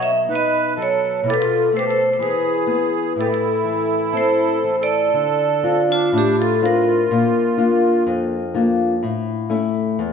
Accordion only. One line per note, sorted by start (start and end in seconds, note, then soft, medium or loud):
0.00 0.11 C#5 medium
0.30 0.74 B4 medium
0.76 1.21 A4 medium
1.26 1.31 E4 medium
1.26 1.36 G4 medium
1.38 1.70 F4 medium
1.74 1.84 G4 medium
1.74 1.79 A4 medium
1.86 2.10 A4 medium
2.11 2.18 A4 soft
2.21 3.13 G#4 medium
3.16 3.23 E4 medium
3.16 3.28 G4 soft
3.28 4.59 E4 medium
4.12 4.76 A4 medium
4.81 5.85 A4 medium
5.89 6.11 D4 medium
6.13 6.36 D4 medium
6.38 6.61 F4 medium
6.63 8.04 F4 medium